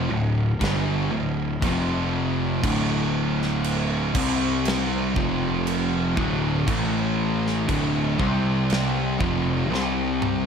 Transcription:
0.09 picked electric bass D1, distorted electric guitar D2 A2
0.59 picked electric bass G1, distorted electric guitar G2 D3 G3, kick, crash
0.64 snare
1.10 picked electric bass D1, distorted electric guitar D2 A2
1.61 picked electric bass F1, distorted electric guitar F2 C3 F3, kick, crash
2.62 picked electric bass D1, distorted electric guitar D2 A2 D3, kick, crash
3.42 snare
3.64 crash
4.14 picked electric bass C2, distorted electric guitar C3 G3 C4, kick, crash
4.65 snare, crash
5.14 picked electric bass F1, distorted electric guitar F2 C3 F3, kick
5.67 crash
6.16 picked electric bass D1, distorted electric guitar D2 A2 D3, kick
6.66 picked electric bass A1, distorted electric guitar A2 E3 A3, kick, crash
7.46 snare
7.67 picked electric bass D1, distorted electric guitar D2 A2 D3, kick, crash
8.18 picked electric bass C2, distorted electric guitar C3 G3 C4, kick
8.70 snare, crash
9.19 picked electric bass F1, distorted electric guitar F2 C3 F3, kick
9.70 picked electric bass C2, distorted electric guitar C3 G3 C4
9.74 snare
10.22 mid tom

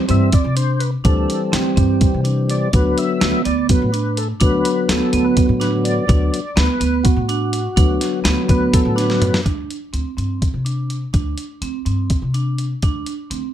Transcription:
0.08 upright bass G2, tonewheel organ E3 G3 C4 E5, vibraphone C4, closed hi-hat
0.32 tonewheel organ D5, kick, closed hi-hat
0.44 upright bass C3
0.56 vibraphone D4, tonewheel organ C5, closed hi-hat
0.80 tonewheel organ B4, closed hi-hat
1.04 upright bass D2, tonewheel organ E3 G3 C4 A4, vibraphone D4, kick, closed hi-hat
1.30 closed hi-hat
1.52 upright bass D2, vibraphone C4, tonewheel organ G4, snare, closed hi-hat
1.76 upright bass G2, vibraphone C4, kick, closed hi-hat
2.01 kick, closed hi-hat
2.14 upright bass C3
2.24 vibraphone D4, closed hi-hat
2.50 tonewheel organ D5, closed hi-hat
2.73 upright bass D2, tonewheel organ D3 F#3 B3 B4, vibraphone D4, kick, closed hi-hat
2.98 tonewheel organ E5, closed hi-hat
3.20 upright bass D2, vibraphone B3, snare, closed hi-hat
3.45 upright bass D2, vibraphone B3, tonewheel organ D5, closed hi-hat
3.69 tonewheel organ D3 F#3 B3 B4, kick, closed hi-hat
3.82 upright bass A2
3.93 vibraphone D4, closed hi-hat
4.17 tonewheel organ A4, closed hi-hat
4.40 upright bass D2, tonewheel organ D3 F#3 B3 B4, vibraphone D4, kick, closed hi-hat
4.65 closed hi-hat
4.89 upright bass D2, vibraphone B3, tonewheel organ A4, snare, closed hi-hat
5.13 upright bass D2, vibraphone B3, closed hi-hat
5.24 tonewheel organ B4
5.37 kick, closed hi-hat
5.49 upright bass A2
5.60 vibraphone D4, tonewheel organ B4, snare, closed hi-hat
5.84 tonewheel organ D5, closed hi-hat
6.07 upright bass D2, tonewheel organ D3 F#3 B3, vibraphone D4, kick, closed hi-hat
6.34 closed hi-hat
6.56 upright bass D2, vibraphone B3, tonewheel organ B4, snare, closed hi-hat
6.80 upright bass D2, vibraphone B3, closed hi-hat
7.03 tonewheel organ F#4, kick, closed hi-hat
7.16 upright bass A2
7.29 vibraphone D4, closed hi-hat
7.53 closed hi-hat
7.76 upright bass D2, tonewheel organ D3 F#3 B3, vibraphone D4, kick, closed hi-hat
8.01 snare, closed hi-hat
8.24 upright bass D2, vibraphone B3, snare, closed hi-hat
8.48 upright bass D2, vibraphone B3, tonewheel organ B4, kick, closed hi-hat
8.73 tonewheel organ A4, kick, closed hi-hat
8.85 upright bass A2
8.95 vibraphone D4, tonewheel organ B4, snare, closed hi-hat
9.10 snare
9.22 closed hi-hat, mid tom
9.34 snare
9.45 upright bass D2, vibraphone D4, kick, closed hi-hat
9.71 closed hi-hat
9.93 upright bass D2, vibraphone C4, closed hi-hat
10.17 upright bass G2, vibraphone C4, closed hi-hat
10.42 kick, closed hi-hat
10.54 upright bass C3
10.65 vibraphone D4, closed hi-hat
10.90 closed hi-hat
11.13 upright bass D2, vibraphone D4, kick, closed hi-hat
11.38 closed hi-hat
11.62 upright bass D2, vibraphone C4, closed hi-hat
11.86 upright bass G2, vibraphone C4, closed hi-hat
12.10 kick, closed hi-hat
12.22 upright bass C3
12.34 vibraphone D4, closed hi-hat
12.58 closed hi-hat
12.82 upright bass D2, vibraphone D4, kick, closed hi-hat
13.06 closed hi-hat
13.31 upright bass D2, vibraphone C4, closed hi-hat

